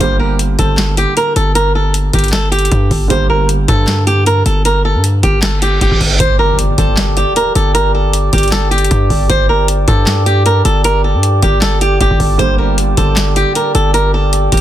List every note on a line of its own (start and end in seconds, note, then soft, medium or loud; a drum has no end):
0.00 0.56 G1 loud
0.00 3.06 D3 medium
0.00 3.06 G3 medium
0.00 3.07 A#3 medium
0.00 3.07 G4 medium
0.00 0.18 C5 loud
0.00 kick loud
0.00 closed hi-hat medium
0.19 0.37 A#4 medium
0.39 closed hi-hat medium
0.59 1.06 G1 loud
0.59 0.95 A4 medium
0.59 kick medium
0.59 closed hi-hat medium
0.78 snare loud
0.78 clap medium
0.78 closed hi-hat medium
0.97 1.15 G4 medium
0.97 closed hi-hat medium
1.17 1.34 A#4 medium
1.17 closed hi-hat medium
1.36 2.10 G1 loud
1.36 1.54 A4 medium
1.36 closed hi-hat medium
1.55 1.73 A#4 medium
1.55 closed hi-hat medium
1.75 1.93 A4 medium
1.94 closed hi-hat medium
2.13 2.69 G1 loud
2.13 2.31 G4 medium
2.13 kick medium
2.13 closed hi-hat medium
2.19 closed hi-hat medium
2.24 closed hi-hat medium
2.28 closed hi-hat soft
2.33 2.50 A4 medium
2.33 snare loud
2.33 clap medium
2.33 closed hi-hat medium
2.52 3.06 G4 medium
2.52 closed hi-hat medium
2.59 closed hi-hat medium
2.65 closed hi-hat medium
2.72 2.90 G2 loud
2.72 kick medium
2.72 closed hi-hat medium
2.91 3.09 G1 loud
2.91 kick medium
2.91 open hi-hat soft
3.08 3.66 G1 loud
3.08 6.15 D3 medium
3.08 6.15 G3 medium
3.08 6.16 A#3 medium
3.08 6.17 G4 medium
3.08 3.28 C5 loud
3.08 kick loud
3.08 closed hi-hat medium
3.30 3.47 A#4 medium
3.49 closed hi-hat medium
3.68 4.43 G2 loud
3.68 4.05 A4 medium
3.68 kick medium
3.68 closed hi-hat medium
3.88 snare loud
3.88 clap medium
3.88 closed hi-hat medium
4.07 4.24 G4 medium
4.07 closed hi-hat medium
4.26 4.44 A#4 medium
4.26 closed hi-hat medium
4.46 4.96 G1 loud
4.46 4.63 A4 medium
4.46 closed hi-hat medium
4.65 4.83 A#4 loud
4.65 closed hi-hat medium
4.85 5.02 A4 medium
4.95 5.22 G2 loud
5.04 closed hi-hat loud
5.23 5.79 G1 loud
5.23 5.41 G4 medium
5.23 kick medium
5.23 closed hi-hat medium
5.42 5.60 A4 medium
5.42 snare loud
5.42 clap medium
5.42 closed hi-hat medium
5.42 reverse cymbal medium
5.62 5.80 G4 medium
5.62 closed hi-hat medium
5.81 5.91 G1 loud
5.81 5.99 G4 medium
5.81 kick medium
5.81 closed hi-hat medium
5.92 6.00 G1 loud
5.92 kick medium
6.01 6.19 G1 loud
6.01 kick medium
6.01 open hi-hat soft
6.20 6.76 G1 loud
6.20 14.61 G4 medium
6.20 6.37 C5 loud
6.20 14.61 D5 medium
6.20 14.61 G5 medium
6.20 14.61 D6 medium
6.20 kick loud
6.20 closed hi-hat medium
6.20 impact medium
6.39 6.57 A#4 medium
6.59 closed hi-hat loud
6.78 7.25 G1 loud
6.78 7.15 A4 medium
6.78 kick medium
6.78 closed hi-hat medium
6.97 snare loud
6.97 clap medium
6.97 closed hi-hat medium
7.17 7.34 G4 medium
7.17 closed hi-hat medium
7.36 7.54 A#4 medium
7.36 closed hi-hat medium
7.55 8.30 G1 loud
7.55 7.73 A4 medium
7.55 closed hi-hat medium
7.74 7.92 A#4 medium
7.74 closed hi-hat medium
7.94 8.12 A4 medium
8.13 closed hi-hat loud
8.33 8.89 G1 loud
8.33 8.51 G4 medium
8.33 kick medium
8.33 closed hi-hat medium
8.38 closed hi-hat medium
8.43 closed hi-hat medium
8.48 closed hi-hat soft
8.52 8.70 A4 medium
8.52 snare loud
8.52 clap medium
8.52 closed hi-hat medium
8.71 9.26 G4 medium
8.71 closed hi-hat medium
8.78 closed hi-hat medium
8.84 closed hi-hat medium
8.91 9.09 G2 loud
8.91 kick medium
8.91 closed hi-hat medium
9.10 9.29 G1 loud
9.10 kick loud
9.10 open hi-hat soft
9.29 9.85 G1 loud
9.29 9.47 C5 loud
9.29 kick loud
9.29 closed hi-hat medium
9.49 9.67 A#4 medium
9.68 closed hi-hat loud
9.88 10.62 G2 loud
9.88 10.24 A4 medium
9.88 kick medium
9.88 closed hi-hat medium
10.07 snare loud
10.07 clap medium
10.07 closed hi-hat medium
10.26 10.44 G4 medium
10.26 closed hi-hat medium
10.46 10.63 A#4 medium
10.46 closed hi-hat medium
10.65 11.16 G1 loud
10.65 10.83 A4 medium
10.65 closed hi-hat medium
10.84 11.02 A#4 loud
10.84 closed hi-hat loud
11.04 11.22 A4 medium
11.14 11.41 G2 loud
11.23 closed hi-hat loud
11.43 11.98 G1 loud
11.43 11.60 G4 medium
11.43 kick medium
11.43 closed hi-hat medium
11.62 11.79 A4 medium
11.62 snare loud
11.62 clap medium
11.62 closed hi-hat medium
11.81 11.99 G4 medium
11.81 closed hi-hat medium
12.01 12.10 G1 loud
12.01 12.18 G4 medium
12.01 kick medium
12.01 closed hi-hat medium
12.11 12.19 G1 loud
12.11 kick loud
12.20 12.38 G1 loud
12.20 kick medium
12.20 open hi-hat soft
12.38 12.95 G1 loud
12.38 14.61 D3 medium
12.38 14.61 G3 medium
12.38 14.61 A#3 medium
12.38 14.61 G4 medium
12.38 12.57 C5 loud
12.38 kick loud
12.38 closed hi-hat loud
12.58 12.76 A#4 medium
12.78 closed hi-hat loud
12.97 13.44 G1 loud
12.97 13.34 A4 medium
12.97 kick medium
12.97 closed hi-hat medium
13.17 snare loud
13.17 clap medium
13.17 closed hi-hat medium
13.36 13.54 G4 medium
13.36 closed hi-hat medium
13.55 13.73 A#4 medium
13.55 closed hi-hat medium
13.75 14.49 G1 loud
13.75 13.92 A4 medium
13.75 closed hi-hat medium
13.94 14.11 A#4 medium
13.94 closed hi-hat medium
14.14 14.31 A4 medium
14.33 closed hi-hat loud
14.52 14.61 G1 loud
14.52 14.61 G4 medium
14.52 kick medium
14.52 closed hi-hat medium
14.57 closed hi-hat medium